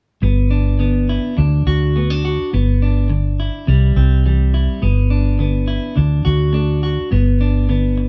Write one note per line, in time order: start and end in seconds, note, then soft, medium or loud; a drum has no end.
0.22 1.17 G1 medium
0.22 0.74 G2 medium
0.22 0.79 B3 medium
0.51 1.34 D4 soft
0.79 1.32 D3 medium
0.79 1.34 B3 soft
1.09 1.38 E4 medium
1.37 1.62 D2 medium
1.37 1.89 D3 medium
1.37 1.95 D4 soft
1.67 2.37 D2 medium
1.67 2.24 F#4 medium
1.96 2.48 A3 medium
1.96 2.10 B3 soft
2.10 2.52 D4 soft
2.25 2.50 F#4 medium
2.53 3.48 G1 medium
2.53 3.05 G2 medium
2.53 3.09 B3 soft
2.82 3.65 D4 soft
3.10 3.62 D3 medium
3.10 muted clean electric guitar stroke soft
3.40 4.53 E4 medium
3.67 3.91 C2 medium
3.67 4.20 C3 medium
3.67 4.25 G3 medium
3.96 4.67 C2 medium
3.96 4.79 C4 medium
4.26 4.77 E3 medium
4.26 4.82 G3 soft
4.54 4.82 E4 medium
4.82 5.77 G1 medium
4.82 5.34 G2 medium
4.82 5.38 B3 medium
5.10 5.94 D4 soft
5.39 5.92 D3 medium
5.39 5.94 B3 soft
5.68 5.97 E4 medium
5.96 6.21 D2 medium
5.96 6.49 D3 medium
5.96 6.53 D4 soft
6.25 6.97 D2 medium
6.25 6.82 F#4 medium
6.53 7.06 A3 medium
6.53 7.09 D4 medium
6.83 7.09 F#4 medium
7.11 8.07 G1 medium
7.11 7.64 G2 medium
7.11 7.68 B3 medium
7.41 8.09 D4 soft
7.69 8.09 D3 medium
7.69 8.09 B3 medium
7.98 muted clean electric guitar stroke medium